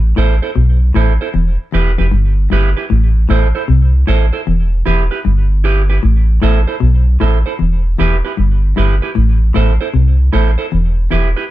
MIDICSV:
0, 0, Header, 1, 4, 480
1, 0, Start_track
1, 0, Key_signature, 0, "minor"
1, 0, Tempo, 781250
1, 1784, Time_signature, 4, 2, 24, 8
1, 7071, End_track
2, 0, Start_track
2, 0, Title_t, "Clean electric guitar"
2, 0, Program_c, 0, 27
2, 104, Note_on_c, 0, 64, 86
2, 108, Note_on_c, 0, 69, 85
2, 111, Note_on_c, 0, 72, 98
2, 210, Note_off_c, 0, 64, 0
2, 212, Note_off_c, 0, 69, 0
2, 214, Note_off_c, 0, 72, 0
2, 261, Note_on_c, 0, 72, 62
2, 263, Note_on_c, 0, 69, 58
2, 268, Note_on_c, 0, 64, 57
2, 305, Note_off_c, 0, 72, 0
2, 307, Note_off_c, 0, 69, 0
2, 309, Note_off_c, 0, 64, 0
2, 586, Note_on_c, 0, 64, 78
2, 589, Note_on_c, 0, 69, 85
2, 592, Note_on_c, 0, 72, 90
2, 691, Note_off_c, 0, 64, 0
2, 693, Note_off_c, 0, 69, 0
2, 694, Note_off_c, 0, 72, 0
2, 743, Note_on_c, 0, 72, 67
2, 748, Note_on_c, 0, 69, 66
2, 751, Note_on_c, 0, 64, 56
2, 787, Note_off_c, 0, 72, 0
2, 789, Note_off_c, 0, 69, 0
2, 790, Note_off_c, 0, 64, 0
2, 1066, Note_on_c, 0, 64, 78
2, 1069, Note_on_c, 0, 67, 84
2, 1072, Note_on_c, 0, 71, 95
2, 1171, Note_off_c, 0, 64, 0
2, 1173, Note_off_c, 0, 67, 0
2, 1174, Note_off_c, 0, 71, 0
2, 1219, Note_on_c, 0, 71, 66
2, 1225, Note_on_c, 0, 67, 55
2, 1228, Note_on_c, 0, 64, 51
2, 1265, Note_off_c, 0, 71, 0
2, 1267, Note_off_c, 0, 67, 0
2, 1269, Note_off_c, 0, 64, 0
2, 1546, Note_on_c, 0, 64, 84
2, 1550, Note_on_c, 0, 67, 92
2, 1552, Note_on_c, 0, 71, 101
2, 1651, Note_off_c, 0, 64, 0
2, 1653, Note_off_c, 0, 67, 0
2, 1654, Note_off_c, 0, 71, 0
2, 1700, Note_on_c, 0, 71, 63
2, 1704, Note_on_c, 0, 67, 59
2, 1708, Note_on_c, 0, 64, 47
2, 1745, Note_off_c, 0, 71, 0
2, 1747, Note_off_c, 0, 67, 0
2, 1749, Note_off_c, 0, 64, 0
2, 2026, Note_on_c, 0, 64, 86
2, 2029, Note_on_c, 0, 69, 92
2, 2031, Note_on_c, 0, 72, 114
2, 2131, Note_off_c, 0, 64, 0
2, 2133, Note_off_c, 0, 69, 0
2, 2134, Note_off_c, 0, 72, 0
2, 2181, Note_on_c, 0, 72, 62
2, 2184, Note_on_c, 0, 69, 59
2, 2188, Note_on_c, 0, 64, 47
2, 2225, Note_off_c, 0, 72, 0
2, 2227, Note_off_c, 0, 69, 0
2, 2229, Note_off_c, 0, 64, 0
2, 2503, Note_on_c, 0, 64, 86
2, 2507, Note_on_c, 0, 69, 88
2, 2509, Note_on_c, 0, 72, 99
2, 2609, Note_off_c, 0, 64, 0
2, 2612, Note_off_c, 0, 69, 0
2, 2613, Note_off_c, 0, 72, 0
2, 2658, Note_on_c, 0, 72, 54
2, 2661, Note_on_c, 0, 69, 61
2, 2664, Note_on_c, 0, 64, 53
2, 2704, Note_off_c, 0, 72, 0
2, 2706, Note_off_c, 0, 69, 0
2, 2707, Note_off_c, 0, 64, 0
2, 2983, Note_on_c, 0, 64, 90
2, 2987, Note_on_c, 0, 67, 93
2, 2990, Note_on_c, 0, 71, 101
2, 3090, Note_off_c, 0, 64, 0
2, 3092, Note_off_c, 0, 67, 0
2, 3093, Note_off_c, 0, 71, 0
2, 3140, Note_on_c, 0, 71, 59
2, 3144, Note_on_c, 0, 67, 57
2, 3147, Note_on_c, 0, 64, 49
2, 3185, Note_off_c, 0, 71, 0
2, 3187, Note_off_c, 0, 67, 0
2, 3189, Note_off_c, 0, 64, 0
2, 3465, Note_on_c, 0, 64, 81
2, 3470, Note_on_c, 0, 67, 98
2, 3472, Note_on_c, 0, 71, 88
2, 3571, Note_off_c, 0, 64, 0
2, 3573, Note_off_c, 0, 67, 0
2, 3574, Note_off_c, 0, 71, 0
2, 3622, Note_on_c, 0, 71, 60
2, 3624, Note_on_c, 0, 67, 65
2, 3630, Note_on_c, 0, 64, 47
2, 3666, Note_off_c, 0, 71, 0
2, 3667, Note_off_c, 0, 67, 0
2, 3670, Note_off_c, 0, 64, 0
2, 3946, Note_on_c, 0, 64, 98
2, 3950, Note_on_c, 0, 69, 109
2, 3952, Note_on_c, 0, 72, 100
2, 4052, Note_off_c, 0, 64, 0
2, 4053, Note_off_c, 0, 69, 0
2, 4055, Note_off_c, 0, 72, 0
2, 4101, Note_on_c, 0, 72, 64
2, 4104, Note_on_c, 0, 69, 62
2, 4108, Note_on_c, 0, 64, 57
2, 4146, Note_off_c, 0, 72, 0
2, 4147, Note_off_c, 0, 69, 0
2, 4149, Note_off_c, 0, 64, 0
2, 4426, Note_on_c, 0, 64, 85
2, 4430, Note_on_c, 0, 69, 91
2, 4433, Note_on_c, 0, 72, 82
2, 4532, Note_off_c, 0, 64, 0
2, 4534, Note_off_c, 0, 69, 0
2, 4535, Note_off_c, 0, 72, 0
2, 4582, Note_on_c, 0, 72, 60
2, 4586, Note_on_c, 0, 69, 53
2, 4591, Note_on_c, 0, 64, 50
2, 4626, Note_off_c, 0, 72, 0
2, 4629, Note_off_c, 0, 69, 0
2, 4631, Note_off_c, 0, 64, 0
2, 4909, Note_on_c, 0, 64, 85
2, 4912, Note_on_c, 0, 67, 96
2, 4916, Note_on_c, 0, 71, 104
2, 5013, Note_off_c, 0, 64, 0
2, 5015, Note_off_c, 0, 67, 0
2, 5017, Note_off_c, 0, 71, 0
2, 5067, Note_on_c, 0, 71, 61
2, 5071, Note_on_c, 0, 67, 57
2, 5074, Note_on_c, 0, 64, 55
2, 5109, Note_off_c, 0, 71, 0
2, 5111, Note_off_c, 0, 67, 0
2, 5112, Note_off_c, 0, 64, 0
2, 5387, Note_on_c, 0, 64, 100
2, 5393, Note_on_c, 0, 67, 98
2, 5394, Note_on_c, 0, 71, 96
2, 5492, Note_off_c, 0, 64, 0
2, 5495, Note_off_c, 0, 67, 0
2, 5496, Note_off_c, 0, 71, 0
2, 5543, Note_on_c, 0, 71, 64
2, 5549, Note_on_c, 0, 67, 59
2, 5551, Note_on_c, 0, 64, 58
2, 5587, Note_off_c, 0, 71, 0
2, 5590, Note_off_c, 0, 67, 0
2, 5591, Note_off_c, 0, 64, 0
2, 5866, Note_on_c, 0, 64, 84
2, 5871, Note_on_c, 0, 69, 99
2, 5873, Note_on_c, 0, 72, 102
2, 5972, Note_off_c, 0, 64, 0
2, 5974, Note_off_c, 0, 69, 0
2, 5975, Note_off_c, 0, 72, 0
2, 6025, Note_on_c, 0, 72, 61
2, 6028, Note_on_c, 0, 69, 60
2, 6031, Note_on_c, 0, 64, 56
2, 6068, Note_off_c, 0, 72, 0
2, 6069, Note_off_c, 0, 69, 0
2, 6071, Note_off_c, 0, 64, 0
2, 6344, Note_on_c, 0, 64, 88
2, 6348, Note_on_c, 0, 69, 96
2, 6350, Note_on_c, 0, 72, 99
2, 6451, Note_off_c, 0, 64, 0
2, 6452, Note_off_c, 0, 69, 0
2, 6454, Note_off_c, 0, 72, 0
2, 6499, Note_on_c, 0, 72, 68
2, 6505, Note_on_c, 0, 69, 63
2, 6506, Note_on_c, 0, 64, 52
2, 6545, Note_off_c, 0, 72, 0
2, 6548, Note_off_c, 0, 64, 0
2, 6548, Note_off_c, 0, 69, 0
2, 6826, Note_on_c, 0, 64, 92
2, 6830, Note_on_c, 0, 67, 101
2, 6832, Note_on_c, 0, 71, 96
2, 6931, Note_off_c, 0, 64, 0
2, 6933, Note_off_c, 0, 67, 0
2, 6934, Note_off_c, 0, 71, 0
2, 6983, Note_on_c, 0, 71, 68
2, 6987, Note_on_c, 0, 67, 62
2, 6989, Note_on_c, 0, 64, 50
2, 7027, Note_off_c, 0, 71, 0
2, 7029, Note_off_c, 0, 67, 0
2, 7030, Note_off_c, 0, 64, 0
2, 7071, End_track
3, 0, Start_track
3, 0, Title_t, "Clean electric guitar"
3, 0, Program_c, 1, 27
3, 100, Note_on_c, 1, 45, 80
3, 194, Note_off_c, 1, 45, 0
3, 341, Note_on_c, 1, 47, 85
3, 486, Note_off_c, 1, 47, 0
3, 580, Note_on_c, 1, 45, 83
3, 674, Note_off_c, 1, 45, 0
3, 822, Note_on_c, 1, 40, 86
3, 916, Note_off_c, 1, 40, 0
3, 1059, Note_on_c, 1, 40, 83
3, 1154, Note_off_c, 1, 40, 0
3, 1218, Note_on_c, 1, 41, 75
3, 1269, Note_off_c, 1, 41, 0
3, 1299, Note_on_c, 1, 43, 77
3, 1445, Note_off_c, 1, 43, 0
3, 1537, Note_on_c, 1, 43, 79
3, 1632, Note_off_c, 1, 43, 0
3, 1782, Note_on_c, 1, 45, 81
3, 1926, Note_off_c, 1, 45, 0
3, 2020, Note_on_c, 1, 45, 87
3, 2114, Note_off_c, 1, 45, 0
3, 2261, Note_on_c, 1, 48, 78
3, 2406, Note_off_c, 1, 48, 0
3, 2502, Note_on_c, 1, 45, 74
3, 2596, Note_off_c, 1, 45, 0
3, 2746, Note_on_c, 1, 40, 94
3, 2889, Note_off_c, 1, 40, 0
3, 2988, Note_on_c, 1, 40, 72
3, 3080, Note_off_c, 1, 40, 0
3, 3225, Note_on_c, 1, 43, 82
3, 3369, Note_off_c, 1, 43, 0
3, 3704, Note_on_c, 1, 45, 88
3, 3848, Note_off_c, 1, 45, 0
3, 3942, Note_on_c, 1, 45, 88
3, 4036, Note_off_c, 1, 45, 0
3, 4180, Note_on_c, 1, 47, 82
3, 4325, Note_off_c, 1, 47, 0
3, 4424, Note_on_c, 1, 45, 85
3, 4518, Note_off_c, 1, 45, 0
3, 4663, Note_on_c, 1, 40, 77
3, 4808, Note_off_c, 1, 40, 0
3, 4906, Note_on_c, 1, 40, 81
3, 4999, Note_off_c, 1, 40, 0
3, 5144, Note_on_c, 1, 43, 78
3, 5289, Note_off_c, 1, 43, 0
3, 5383, Note_on_c, 1, 43, 74
3, 5477, Note_off_c, 1, 43, 0
3, 5623, Note_on_c, 1, 45, 92
3, 5767, Note_off_c, 1, 45, 0
3, 5863, Note_on_c, 1, 45, 93
3, 5957, Note_off_c, 1, 45, 0
3, 6105, Note_on_c, 1, 48, 83
3, 6249, Note_off_c, 1, 48, 0
3, 6346, Note_on_c, 1, 45, 76
3, 6439, Note_off_c, 1, 45, 0
3, 6586, Note_on_c, 1, 40, 94
3, 6730, Note_off_c, 1, 40, 0
3, 6823, Note_on_c, 1, 40, 70
3, 6917, Note_off_c, 1, 40, 0
3, 7071, End_track
4, 0, Start_track
4, 0, Title_t, "Sub bass"
4, 0, Program_c, 2, 38
4, 0, Note_on_c, 2, 33, 105
4, 84, Note_off_c, 2, 33, 0
4, 109, Note_on_c, 2, 33, 101
4, 248, Note_off_c, 2, 33, 0
4, 348, Note_on_c, 2, 35, 85
4, 564, Note_off_c, 2, 35, 0
4, 588, Note_on_c, 2, 33, 97
4, 728, Note_off_c, 2, 33, 0
4, 828, Note_on_c, 2, 28, 106
4, 967, Note_off_c, 2, 28, 0
4, 1070, Note_on_c, 2, 28, 103
4, 1209, Note_off_c, 2, 28, 0
4, 1226, Note_on_c, 2, 29, 99
4, 1300, Note_off_c, 2, 29, 0
4, 1307, Note_on_c, 2, 31, 96
4, 1524, Note_off_c, 2, 31, 0
4, 1548, Note_on_c, 2, 31, 91
4, 1688, Note_off_c, 2, 31, 0
4, 1790, Note_on_c, 2, 33, 97
4, 2006, Note_off_c, 2, 33, 0
4, 2029, Note_on_c, 2, 33, 113
4, 2168, Note_off_c, 2, 33, 0
4, 2269, Note_on_c, 2, 36, 93
4, 2485, Note_off_c, 2, 36, 0
4, 2512, Note_on_c, 2, 33, 95
4, 2650, Note_off_c, 2, 33, 0
4, 2751, Note_on_c, 2, 28, 103
4, 2966, Note_off_c, 2, 28, 0
4, 2992, Note_on_c, 2, 28, 96
4, 3130, Note_off_c, 2, 28, 0
4, 3231, Note_on_c, 2, 31, 103
4, 3684, Note_off_c, 2, 31, 0
4, 3713, Note_on_c, 2, 33, 113
4, 3928, Note_off_c, 2, 33, 0
4, 3952, Note_on_c, 2, 33, 107
4, 4090, Note_off_c, 2, 33, 0
4, 4192, Note_on_c, 2, 35, 98
4, 4407, Note_off_c, 2, 35, 0
4, 4436, Note_on_c, 2, 33, 96
4, 4572, Note_off_c, 2, 33, 0
4, 4676, Note_on_c, 2, 28, 98
4, 4889, Note_off_c, 2, 28, 0
4, 4916, Note_on_c, 2, 28, 107
4, 5052, Note_off_c, 2, 28, 0
4, 5155, Note_on_c, 2, 31, 99
4, 5369, Note_off_c, 2, 31, 0
4, 5396, Note_on_c, 2, 31, 93
4, 5533, Note_off_c, 2, 31, 0
4, 5636, Note_on_c, 2, 33, 99
4, 5849, Note_off_c, 2, 33, 0
4, 5877, Note_on_c, 2, 33, 108
4, 6013, Note_off_c, 2, 33, 0
4, 6114, Note_on_c, 2, 36, 88
4, 6328, Note_off_c, 2, 36, 0
4, 6357, Note_on_c, 2, 33, 89
4, 6493, Note_off_c, 2, 33, 0
4, 6596, Note_on_c, 2, 28, 102
4, 6809, Note_off_c, 2, 28, 0
4, 6835, Note_on_c, 2, 28, 101
4, 6972, Note_off_c, 2, 28, 0
4, 7071, End_track
0, 0, End_of_file